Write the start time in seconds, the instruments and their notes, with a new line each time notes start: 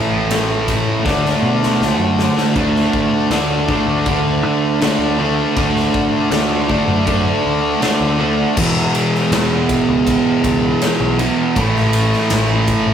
Already playing: picked electric bass A1, distorted electric guitar A2 E3 A3
0.31 snare, ride
0.68 kick, snare, ride
1.04 picked electric bass D2, distorted electric guitar D3 A3 D4, kick, snare
1.26 snare
1.43 picked electric bass B2
1.63 snare
1.80 picked electric bass C#2, snare
1.98 picked electric bass F#2
2.19 snare
2.38 snare
2.55 picked electric bass D2, distorted electric guitar D3 A3 D4, kick, crash
2.75 snare
2.93 kick
3.30 picked electric bass D2, distorted electric guitar D3 A3 D4, snare, crash
3.69 distorted electric guitar D3 A3 D4, kick
3.87 picked electric bass D2
4.06 distorted electric guitar D3 A3 D4, kick, crash
4.43 picked electric bass D3
4.81 distorted electric guitar D3 A3 D4, snare, crash
4.99 picked electric bass D2
5.18 distorted electric guitar D3 A3 D4
5.56 picked electric bass D2, distorted electric guitar D3 A3 D4, kick, crash
5.76 snare
5.94 kick
6.31 picked electric bass D2, distorted electric guitar D3 A3 D4, snare, crash
6.69 distorted electric guitar D3 A3 D4, kick
6.88 picked electric bass F#2
7.06 distorted electric guitar D3 A3 D4, kick, crash
7.46 picked electric bass D2
7.81 distorted electric guitar D3 A3 D4, snare, crash
8.01 picked electric bass D2
8.19 distorted electric guitar D3 A3 D4
8.56 distorted electric guitar E2 B2 E3, picked electric bass E2, kick, crash
8.77 snare
8.95 ride
9.15 snare
9.31 picked electric bass E2, snare, ride
9.69 kick, ride
9.88 picked electric bass C#2
10.07 kick, ride
10.44 picked electric bass C#2, kick, ride
10.82 snare, ride
11.00 picked electric bass B1
11.18 distorted electric guitar E2 B2 E3, ride
11.56 picked electric bass A1, distorted electric guitar A2 E3 A3, kick, ride
11.76 snare
11.93 ride
12.12 snare
12.30 picked electric bass A1, snare, ride
12.68 kick, ride
12.86 picked electric bass A1